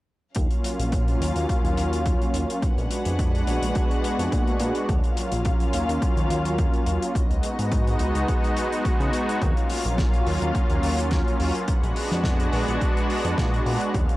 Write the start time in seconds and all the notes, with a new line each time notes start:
0.35 D#2 F#3 A#3 C#4 F4 F5, kick, closed hi-hat
0.51 closed hi-hat
0.64 closed hi-hat
0.78 A#1 F#3 A#3 C#4 F4, closed hi-hat
0.92 kick, closed hi-hat
1.08 closed hi-hat
1.21 D#2, closed hi-hat
1.36 D#2, closed hi-hat
1.49 D#2, kick, closed hi-hat
1.64 D#2, closed hi-hat
1.77 D#2, closed hi-hat
1.93 closed hi-hat
2.06 kick, closed hi-hat
2.22 closed hi-hat
2.34 D#2, closed hi-hat
2.50 closed hi-hat
2.62 A#1 G#3 B3 D4 F#4 G#4 B4 F#5, kick, closed hi-hat
2.78 A#1, closed hi-hat
2.91 closed hi-hat
3.05 F2 G#3 B3 D4 F#4, closed hi-hat
3.19 kick, closed hi-hat
3.35 closed hi-hat
3.47 A#1, closed hi-hat
3.62 A#1, closed hi-hat
3.75 kick, closed hi-hat
3.91 closed hi-hat
4.04 closed hi-hat
4.19 F2, closed hi-hat
4.32 A#2, kick, closed hi-hat
4.47 closed hi-hat
4.59 A#2, closed hi-hat
4.75 closed hi-hat
4.88 D#2 F#3 A#3 C#4 F4 F5, kick, closed hi-hat
5.04 closed hi-hat
5.17 closed hi-hat
5.31 A#1 F#3 A#3 C#4 F4, closed hi-hat
5.45 kick, closed hi-hat
5.60 closed hi-hat
5.73 D#2, closed hi-hat
5.89 D#2, closed hi-hat
6.02 D#2, kick, closed hi-hat
6.17 D#2, closed hi-hat
6.30 D#2, closed hi-hat
6.45 closed hi-hat
6.58 kick, closed hi-hat
6.74 closed hi-hat
6.86 D#2, closed hi-hat
7.02 closed hi-hat
7.14 C#2 G#3 B3 D#4 F#4 D#5, kick, closed hi-hat
7.30 C#2, closed hi-hat
7.43 closed hi-hat
7.58 G#2 G#3 B3 D#4 F#4, closed hi-hat
7.72 kick, closed hi-hat
7.87 closed hi-hat
7.99 C#2, closed hi-hat
8.15 C#2, closed hi-hat
8.28 kick, closed hi-hat
8.44 closed hi-hat
8.57 closed hi-hat
8.70 G#3 B3 D#4 F#4, closed hi-hat
8.85 kick, closed hi-hat
9.00 C#3, closed hi-hat
9.13 closed hi-hat
9.29 closed hi-hat
9.41 D#2 F#3 A#3 C#4 F4 F5, kick, closed hi-hat
9.57 closed hi-hat
9.70 open hi-hat
9.84 A#1 F#3 A#3 C#4 F4, closed hi-hat
9.98 kick, snare, closed hi-hat
10.14 closed hi-hat
10.26 D#2, open hi-hat
10.42 D#2, closed hi-hat
10.55 D#2, kick, closed hi-hat
10.70 D#2, closed hi-hat
10.83 D#2, open hi-hat
10.98 closed hi-hat
11.11 kick, snare, closed hi-hat
11.28 closed hi-hat
11.40 D#2, open hi-hat
11.55 closed hi-hat
11.67 A#1 G#3 B3 D4 F#4 G#4 B4 F#5, kick, closed hi-hat
11.83 A#1, closed hi-hat
11.96 open hi-hat
12.11 F2 G#3 B3 D4 F#4, snare, closed hi-hat
12.24 kick, snare, closed hi-hat
12.40 closed hi-hat
12.53 A#1, open hi-hat
12.68 A#1, closed hi-hat
12.81 kick, closed hi-hat
12.97 closed hi-hat
13.10 open hi-hat
13.25 F2, closed hi-hat
13.38 A#2, kick, snare, closed hi-hat
13.54 closed hi-hat
13.66 A#2, open hi-hat
13.81 closed hi-hat
13.93 D#2 F#3 A#3 C#4 F4 F5, kick, closed hi-hat
14.09 closed hi-hat